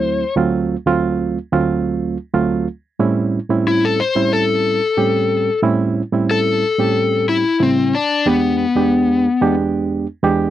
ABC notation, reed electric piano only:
X:1
M:4/4
L:1/16
Q:1/4=91
K:D
V:1 name="Reed electric piano"
[D,,F,A,=CE] z [D,,F,A,C^E]2 z [D,,F,A,CE]3 z [D,,F,A,CE]4 z [D,,F,A,CE]2 | z2 [A,,G,^B,CE]2 z [A,,G,B,CE]3 z [A,,G,B,CE]4 z [A,,G,B,CG]2- | [A,,G,^B,CG] z [A,,G,B,CE]2 z [A,,G,B,CE]3 z [A,,G,B,CG]4 z [A,,C,G,B,E]2 | z2 [E,,^G,B,D=G]2 z [E,,^G,B,D=G]3 z [E,,^G,B,D=G]4 z [E,,^G,B,D=G]2 |]